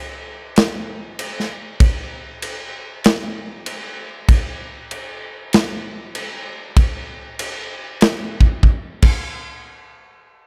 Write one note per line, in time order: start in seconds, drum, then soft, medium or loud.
0.56 snare loud
0.56 crash medium
1.19 crash medium
1.40 snare soft
1.80 kick loud
1.80 crash medium
2.42 crash medium
3.04 snare loud
3.04 crash medium
3.66 crash medium
4.29 kick loud
4.29 crash medium
4.91 crash medium
5.53 snare loud
5.53 crash medium
6.15 crash medium
6.77 kick loud
6.77 crash medium
7.39 crash medium
8.01 snare loud
8.01 crash medium
8.41 kick medium
8.63 kick medium
9.02 kick loud
9.02 crash medium